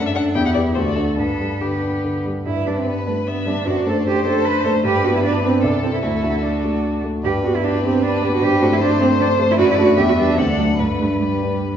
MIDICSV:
0, 0, Header, 1, 5, 480
1, 0, Start_track
1, 0, Key_signature, 1, "major"
1, 0, Tempo, 401606
1, 900, Tempo, 423729
1, 1381, Time_signature, 3, 2, 24, 8
1, 3300, Tempo, 393959
1, 7140, Tempo, 404585
1, 9060, Tempo, 390879
1, 11940, Tempo, 412655
1, 14013, End_track
2, 0, Start_track
2, 0, Title_t, "Violin"
2, 0, Program_c, 0, 40
2, 80, Note_on_c, 0, 76, 60
2, 123, Note_off_c, 0, 76, 0
2, 180, Note_on_c, 0, 78, 71
2, 274, Note_off_c, 0, 78, 0
2, 417, Note_on_c, 0, 79, 70
2, 532, Note_off_c, 0, 79, 0
2, 548, Note_on_c, 0, 78, 64
2, 593, Note_off_c, 0, 78, 0
2, 644, Note_on_c, 0, 74, 60
2, 739, Note_off_c, 0, 74, 0
2, 891, Note_on_c, 0, 72, 56
2, 941, Note_off_c, 0, 72, 0
2, 1006, Note_on_c, 0, 74, 51
2, 1117, Note_off_c, 0, 74, 0
2, 1124, Note_on_c, 0, 69, 49
2, 1215, Note_off_c, 0, 69, 0
2, 1363, Note_on_c, 0, 69, 50
2, 1869, Note_on_c, 0, 67, 37
2, 1886, Note_off_c, 0, 69, 0
2, 2600, Note_off_c, 0, 67, 0
2, 3293, Note_on_c, 0, 71, 48
2, 3785, Note_on_c, 0, 76, 58
2, 3803, Note_off_c, 0, 71, 0
2, 4276, Note_on_c, 0, 74, 49
2, 4294, Note_off_c, 0, 76, 0
2, 4757, Note_off_c, 0, 74, 0
2, 4769, Note_on_c, 0, 72, 61
2, 5690, Note_off_c, 0, 72, 0
2, 5697, Note_on_c, 0, 71, 63
2, 6168, Note_off_c, 0, 71, 0
2, 6191, Note_on_c, 0, 71, 59
2, 6647, Note_off_c, 0, 71, 0
2, 6654, Note_on_c, 0, 69, 59
2, 7138, Note_on_c, 0, 66, 48
2, 7156, Note_off_c, 0, 69, 0
2, 8343, Note_off_c, 0, 66, 0
2, 9060, Note_on_c, 0, 67, 49
2, 9509, Note_off_c, 0, 67, 0
2, 9527, Note_on_c, 0, 71, 68
2, 10493, Note_on_c, 0, 72, 75
2, 10511, Note_off_c, 0, 71, 0
2, 11435, Note_off_c, 0, 72, 0
2, 11443, Note_on_c, 0, 71, 75
2, 12380, Note_off_c, 0, 71, 0
2, 12390, Note_on_c, 0, 69, 58
2, 12863, Note_off_c, 0, 69, 0
2, 12870, Note_on_c, 0, 71, 44
2, 14013, Note_off_c, 0, 71, 0
2, 14013, End_track
3, 0, Start_track
3, 0, Title_t, "Violin"
3, 0, Program_c, 1, 40
3, 0, Note_on_c, 1, 62, 49
3, 420, Note_on_c, 1, 64, 48
3, 438, Note_off_c, 1, 62, 0
3, 903, Note_off_c, 1, 64, 0
3, 909, Note_on_c, 1, 66, 47
3, 1377, Note_off_c, 1, 66, 0
3, 1384, Note_on_c, 1, 59, 36
3, 1866, Note_off_c, 1, 59, 0
3, 1872, Note_on_c, 1, 59, 34
3, 2587, Note_off_c, 1, 59, 0
3, 2830, Note_on_c, 1, 71, 40
3, 4212, Note_off_c, 1, 71, 0
3, 4254, Note_on_c, 1, 72, 47
3, 5648, Note_off_c, 1, 72, 0
3, 5722, Note_on_c, 1, 71, 58
3, 6618, Note_off_c, 1, 71, 0
3, 6653, Note_on_c, 1, 69, 51
3, 8295, Note_off_c, 1, 69, 0
3, 8581, Note_on_c, 1, 71, 45
3, 9026, Note_off_c, 1, 71, 0
3, 9057, Note_on_c, 1, 71, 47
3, 9532, Note_off_c, 1, 71, 0
3, 9558, Note_on_c, 1, 71, 54
3, 10011, Note_off_c, 1, 71, 0
3, 10019, Note_on_c, 1, 72, 61
3, 11429, Note_off_c, 1, 72, 0
3, 11445, Note_on_c, 1, 74, 64
3, 11923, Note_off_c, 1, 74, 0
3, 11939, Note_on_c, 1, 76, 59
3, 12404, Note_on_c, 1, 78, 53
3, 12422, Note_off_c, 1, 76, 0
3, 12875, Note_on_c, 1, 71, 43
3, 12893, Note_off_c, 1, 78, 0
3, 13361, Note_off_c, 1, 71, 0
3, 13368, Note_on_c, 1, 71, 43
3, 14013, Note_off_c, 1, 71, 0
3, 14013, End_track
4, 0, Start_track
4, 0, Title_t, "Cello"
4, 0, Program_c, 2, 42
4, 0, Note_on_c, 2, 69, 49
4, 426, Note_on_c, 2, 67, 53
4, 444, Note_off_c, 2, 69, 0
4, 893, Note_on_c, 2, 69, 50
4, 910, Note_off_c, 2, 67, 0
4, 1388, Note_on_c, 2, 71, 43
4, 1405, Note_off_c, 2, 69, 0
4, 2606, Note_off_c, 2, 71, 0
4, 2831, Note_on_c, 2, 64, 65
4, 3069, Note_on_c, 2, 62, 53
4, 3086, Note_off_c, 2, 64, 0
4, 3197, Note_on_c, 2, 60, 51
4, 3214, Note_off_c, 2, 62, 0
4, 3294, Note_on_c, 2, 59, 53
4, 3312, Note_off_c, 2, 60, 0
4, 3541, Note_off_c, 2, 59, 0
4, 3546, Note_on_c, 2, 57, 52
4, 3642, Note_off_c, 2, 57, 0
4, 3788, Note_on_c, 2, 59, 62
4, 4039, Note_on_c, 2, 62, 64
4, 4057, Note_off_c, 2, 59, 0
4, 4272, Note_on_c, 2, 66, 77
4, 4291, Note_off_c, 2, 62, 0
4, 4513, Note_off_c, 2, 66, 0
4, 4533, Note_on_c, 2, 69, 70
4, 4625, Note_off_c, 2, 69, 0
4, 4767, Note_on_c, 2, 67, 77
4, 4989, Note_off_c, 2, 67, 0
4, 4997, Note_on_c, 2, 69, 78
4, 5224, Note_on_c, 2, 71, 87
4, 5242, Note_off_c, 2, 69, 0
4, 5457, Note_off_c, 2, 71, 0
4, 5464, Note_on_c, 2, 69, 79
4, 5559, Note_off_c, 2, 69, 0
4, 5702, Note_on_c, 2, 67, 90
4, 5949, Note_on_c, 2, 66, 74
4, 5967, Note_off_c, 2, 67, 0
4, 6061, Note_off_c, 2, 66, 0
4, 6069, Note_on_c, 2, 64, 71
4, 6115, Note_off_c, 2, 64, 0
4, 6175, Note_on_c, 2, 62, 81
4, 6412, Note_off_c, 2, 62, 0
4, 6418, Note_on_c, 2, 60, 67
4, 6659, Note_on_c, 2, 62, 73
4, 6677, Note_off_c, 2, 60, 0
4, 6887, Note_off_c, 2, 62, 0
4, 6894, Note_on_c, 2, 60, 57
4, 7015, Note_off_c, 2, 60, 0
4, 7030, Note_on_c, 2, 64, 57
4, 7139, Note_off_c, 2, 64, 0
4, 7146, Note_on_c, 2, 64, 64
4, 7619, Note_on_c, 2, 62, 51
4, 7637, Note_off_c, 2, 64, 0
4, 8344, Note_off_c, 2, 62, 0
4, 8589, Note_on_c, 2, 67, 76
4, 8684, Note_off_c, 2, 67, 0
4, 8824, Note_on_c, 2, 66, 67
4, 8961, Note_on_c, 2, 64, 61
4, 8978, Note_off_c, 2, 66, 0
4, 9054, Note_on_c, 2, 62, 70
4, 9073, Note_off_c, 2, 64, 0
4, 9300, Note_off_c, 2, 62, 0
4, 9307, Note_on_c, 2, 60, 68
4, 9534, Note_on_c, 2, 62, 75
4, 9553, Note_off_c, 2, 60, 0
4, 9897, Note_off_c, 2, 62, 0
4, 9911, Note_on_c, 2, 66, 74
4, 10030, Note_on_c, 2, 67, 88
4, 10048, Note_off_c, 2, 66, 0
4, 10258, Note_off_c, 2, 67, 0
4, 10265, Note_on_c, 2, 66, 83
4, 10312, Note_off_c, 2, 66, 0
4, 10390, Note_on_c, 2, 64, 74
4, 10437, Note_off_c, 2, 64, 0
4, 10493, Note_on_c, 2, 62, 94
4, 10723, Note_off_c, 2, 62, 0
4, 10731, Note_on_c, 2, 60, 82
4, 10829, Note_off_c, 2, 60, 0
4, 10978, Note_on_c, 2, 62, 85
4, 11076, Note_off_c, 2, 62, 0
4, 11354, Note_on_c, 2, 64, 87
4, 11399, Note_off_c, 2, 64, 0
4, 11441, Note_on_c, 2, 66, 94
4, 11568, Note_off_c, 2, 66, 0
4, 11594, Note_on_c, 2, 64, 80
4, 11639, Note_off_c, 2, 64, 0
4, 11693, Note_on_c, 2, 66, 87
4, 11917, Note_off_c, 2, 66, 0
4, 11924, Note_on_c, 2, 67, 90
4, 11974, Note_off_c, 2, 67, 0
4, 12056, Note_on_c, 2, 66, 76
4, 12102, Note_off_c, 2, 66, 0
4, 12165, Note_on_c, 2, 62, 71
4, 12389, Note_on_c, 2, 60, 64
4, 12406, Note_off_c, 2, 62, 0
4, 12518, Note_off_c, 2, 60, 0
4, 12526, Note_on_c, 2, 62, 64
4, 12638, Note_on_c, 2, 57, 58
4, 12656, Note_off_c, 2, 62, 0
4, 12880, Note_off_c, 2, 57, 0
4, 12887, Note_on_c, 2, 57, 61
4, 13371, Note_on_c, 2, 55, 48
4, 13388, Note_off_c, 2, 57, 0
4, 14013, Note_off_c, 2, 55, 0
4, 14013, End_track
5, 0, Start_track
5, 0, Title_t, "Grand piano"
5, 0, Program_c, 3, 0
5, 0, Note_on_c, 3, 42, 48
5, 155, Control_c, 3, 64, 127
5, 172, Note_on_c, 3, 62, 41
5, 176, Note_on_c, 3, 69, 44
5, 387, Note_off_c, 3, 62, 0
5, 389, Note_off_c, 3, 69, 0
5, 393, Note_off_c, 3, 42, 0
5, 418, Note_on_c, 3, 40, 52
5, 437, Control_c, 3, 64, 0
5, 617, Control_c, 3, 64, 127
5, 656, Note_on_c, 3, 67, 35
5, 659, Note_on_c, 3, 71, 36
5, 876, Note_off_c, 3, 67, 0
5, 879, Note_off_c, 3, 71, 0
5, 888, Note_off_c, 3, 40, 0
5, 904, Note_on_c, 3, 38, 45
5, 923, Control_c, 3, 64, 0
5, 1095, Control_c, 3, 64, 127
5, 1140, Note_on_c, 3, 62, 30
5, 1143, Note_on_c, 3, 74, 35
5, 1358, Note_off_c, 3, 62, 0
5, 1360, Note_off_c, 3, 74, 0
5, 1370, Note_off_c, 3, 38, 0
5, 1381, Note_on_c, 3, 43, 34
5, 1407, Control_c, 3, 64, 0
5, 1611, Control_c, 3, 64, 127
5, 1630, Note_on_c, 3, 55, 27
5, 1872, Note_on_c, 3, 50, 25
5, 2023, Note_off_c, 3, 55, 0
5, 2119, Note_on_c, 3, 62, 24
5, 2263, Note_off_c, 3, 50, 0
5, 2358, Note_on_c, 3, 50, 25
5, 2505, Note_off_c, 3, 62, 0
5, 2600, Note_on_c, 3, 55, 26
5, 2745, Note_off_c, 3, 50, 0
5, 2796, Note_off_c, 3, 43, 0
5, 2832, Note_on_c, 3, 43, 36
5, 2839, Note_off_c, 3, 55, 0
5, 2863, Control_c, 3, 64, 0
5, 3060, Note_off_c, 3, 43, 0
5, 3061, Note_on_c, 3, 55, 30
5, 3070, Note_on_c, 3, 62, 32
5, 3071, Note_on_c, 3, 71, 36
5, 3084, Control_c, 3, 64, 127
5, 3490, Note_off_c, 3, 55, 0
5, 3494, Note_off_c, 3, 62, 0
5, 3495, Note_off_c, 3, 71, 0
5, 3541, Note_on_c, 3, 55, 29
5, 3543, Note_on_c, 3, 62, 29
5, 3547, Note_on_c, 3, 71, 34
5, 3975, Note_off_c, 3, 55, 0
5, 3976, Note_off_c, 3, 62, 0
5, 3978, Note_off_c, 3, 71, 0
5, 4017, Note_on_c, 3, 55, 35
5, 4026, Note_on_c, 3, 62, 36
5, 4027, Note_on_c, 3, 71, 39
5, 4238, Note_off_c, 3, 55, 0
5, 4243, Note_off_c, 3, 62, 0
5, 4244, Note_off_c, 3, 71, 0
5, 4258, Note_on_c, 3, 42, 47
5, 4291, Control_c, 3, 64, 0
5, 4498, Note_off_c, 3, 42, 0
5, 4506, Note_on_c, 3, 57, 39
5, 4513, Note_on_c, 3, 62, 43
5, 4515, Note_on_c, 3, 72, 44
5, 4517, Control_c, 3, 64, 127
5, 4941, Note_off_c, 3, 57, 0
5, 4945, Note_off_c, 3, 62, 0
5, 4946, Note_off_c, 3, 72, 0
5, 4985, Note_on_c, 3, 57, 41
5, 4989, Note_on_c, 3, 62, 40
5, 4995, Note_on_c, 3, 72, 43
5, 5415, Note_off_c, 3, 57, 0
5, 5418, Note_off_c, 3, 62, 0
5, 5421, Note_off_c, 3, 72, 0
5, 5458, Note_on_c, 3, 57, 48
5, 5460, Note_on_c, 3, 62, 45
5, 5469, Note_on_c, 3, 72, 49
5, 5675, Note_off_c, 3, 57, 0
5, 5676, Note_off_c, 3, 62, 0
5, 5681, Note_off_c, 3, 72, 0
5, 5697, Note_on_c, 3, 43, 59
5, 5727, Control_c, 3, 64, 0
5, 5923, Control_c, 3, 64, 127
5, 5931, Note_off_c, 3, 43, 0
5, 5939, Note_on_c, 3, 59, 48
5, 5946, Note_on_c, 3, 62, 46
5, 5949, Note_on_c, 3, 71, 50
5, 6370, Note_off_c, 3, 59, 0
5, 6374, Note_off_c, 3, 62, 0
5, 6376, Note_off_c, 3, 71, 0
5, 6423, Note_on_c, 3, 59, 38
5, 6428, Note_on_c, 3, 71, 41
5, 6429, Note_on_c, 3, 62, 38
5, 6635, Note_off_c, 3, 59, 0
5, 6638, Note_off_c, 3, 71, 0
5, 6639, Note_off_c, 3, 62, 0
5, 6664, Note_on_c, 3, 36, 56
5, 6681, Control_c, 3, 64, 0
5, 6874, Control_c, 3, 64, 127
5, 6894, Note_off_c, 3, 36, 0
5, 6906, Note_on_c, 3, 60, 38
5, 6912, Note_on_c, 3, 64, 38
5, 6916, Note_on_c, 3, 69, 38
5, 7122, Note_off_c, 3, 60, 0
5, 7125, Note_off_c, 3, 64, 0
5, 7127, Note_off_c, 3, 69, 0
5, 7146, Note_on_c, 3, 38, 42
5, 7167, Control_c, 3, 64, 0
5, 7334, Control_c, 3, 64, 127
5, 7376, Note_off_c, 3, 38, 0
5, 7387, Note_on_c, 3, 57, 33
5, 7389, Note_on_c, 3, 62, 31
5, 7397, Note_on_c, 3, 66, 36
5, 7820, Note_off_c, 3, 57, 0
5, 7821, Note_off_c, 3, 62, 0
5, 7825, Note_off_c, 3, 66, 0
5, 7864, Note_on_c, 3, 57, 29
5, 7868, Note_on_c, 3, 62, 28
5, 7873, Note_on_c, 3, 66, 32
5, 8298, Note_off_c, 3, 57, 0
5, 8299, Note_off_c, 3, 62, 0
5, 8302, Note_off_c, 3, 66, 0
5, 8345, Note_on_c, 3, 57, 28
5, 8345, Note_on_c, 3, 62, 30
5, 8350, Note_on_c, 3, 66, 32
5, 8561, Note_off_c, 3, 57, 0
5, 8561, Note_off_c, 3, 62, 0
5, 8563, Note_off_c, 3, 66, 0
5, 8576, Note_on_c, 3, 43, 49
5, 8610, Control_c, 3, 64, 0
5, 8812, Note_off_c, 3, 43, 0
5, 8812, Note_on_c, 3, 59, 37
5, 8819, Note_on_c, 3, 62, 38
5, 8822, Control_c, 3, 64, 127
5, 8825, Note_on_c, 3, 67, 39
5, 9248, Note_off_c, 3, 59, 0
5, 9252, Note_off_c, 3, 62, 0
5, 9255, Note_off_c, 3, 67, 0
5, 9296, Note_on_c, 3, 59, 35
5, 9304, Note_on_c, 3, 62, 38
5, 9308, Note_on_c, 3, 67, 42
5, 9730, Note_off_c, 3, 59, 0
5, 9735, Note_off_c, 3, 62, 0
5, 9737, Note_off_c, 3, 67, 0
5, 9766, Note_on_c, 3, 59, 44
5, 9771, Note_on_c, 3, 62, 45
5, 9773, Note_on_c, 3, 67, 47
5, 9989, Note_off_c, 3, 59, 0
5, 9991, Note_off_c, 3, 62, 0
5, 9992, Note_off_c, 3, 67, 0
5, 10012, Note_on_c, 3, 43, 56
5, 10045, Control_c, 3, 64, 0
5, 10247, Note_on_c, 3, 57, 48
5, 10249, Note_off_c, 3, 43, 0
5, 10250, Control_c, 3, 64, 127
5, 10256, Note_on_c, 3, 60, 51
5, 10261, Note_on_c, 3, 69, 54
5, 10685, Note_off_c, 3, 57, 0
5, 10690, Note_off_c, 3, 60, 0
5, 10693, Note_off_c, 3, 69, 0
5, 10725, Note_on_c, 3, 57, 49
5, 10732, Note_on_c, 3, 60, 51
5, 10734, Note_on_c, 3, 69, 52
5, 11164, Note_off_c, 3, 57, 0
5, 11168, Note_off_c, 3, 60, 0
5, 11169, Note_off_c, 3, 69, 0
5, 11209, Note_on_c, 3, 57, 52
5, 11215, Note_on_c, 3, 60, 48
5, 11220, Note_on_c, 3, 69, 57
5, 11429, Note_off_c, 3, 57, 0
5, 11433, Note_off_c, 3, 60, 0
5, 11435, Note_off_c, 3, 69, 0
5, 11451, Note_on_c, 3, 42, 65
5, 11483, Control_c, 3, 64, 0
5, 11681, Control_c, 3, 64, 127
5, 11685, Note_on_c, 3, 57, 48
5, 11688, Note_off_c, 3, 42, 0
5, 11694, Note_on_c, 3, 62, 49
5, 11696, Note_on_c, 3, 69, 57
5, 11908, Note_off_c, 3, 57, 0
5, 11913, Note_off_c, 3, 62, 0
5, 11914, Note_off_c, 3, 69, 0
5, 11924, Note_on_c, 3, 40, 58
5, 11961, Control_c, 3, 64, 0
5, 12150, Control_c, 3, 64, 127
5, 12156, Note_off_c, 3, 40, 0
5, 12166, Note_on_c, 3, 55, 42
5, 12171, Note_on_c, 3, 67, 41
5, 12175, Note_on_c, 3, 71, 42
5, 12380, Note_off_c, 3, 55, 0
5, 12384, Note_off_c, 3, 67, 0
5, 12386, Note_off_c, 3, 71, 0
5, 12394, Note_on_c, 3, 38, 56
5, 12430, Control_c, 3, 64, 0
5, 12623, Control_c, 3, 64, 127
5, 12633, Note_off_c, 3, 38, 0
5, 12636, Note_on_c, 3, 54, 36
5, 12637, Note_on_c, 3, 62, 36
5, 12644, Note_on_c, 3, 74, 39
5, 12859, Note_off_c, 3, 54, 0
5, 12859, Note_off_c, 3, 62, 0
5, 12863, Note_off_c, 3, 74, 0
5, 12878, Note_on_c, 3, 43, 43
5, 12914, Control_c, 3, 64, 0
5, 13109, Control_c, 3, 64, 127
5, 13114, Note_on_c, 3, 55, 33
5, 13119, Note_off_c, 3, 43, 0
5, 13121, Note_on_c, 3, 62, 32
5, 13124, Note_on_c, 3, 71, 36
5, 13562, Note_off_c, 3, 55, 0
5, 13566, Note_off_c, 3, 62, 0
5, 13567, Note_off_c, 3, 71, 0
5, 13610, Note_on_c, 3, 55, 29
5, 13610, Note_on_c, 3, 62, 27
5, 13621, Note_on_c, 3, 71, 33
5, 14013, Note_off_c, 3, 55, 0
5, 14013, Note_off_c, 3, 62, 0
5, 14013, Note_off_c, 3, 71, 0
5, 14013, End_track
0, 0, End_of_file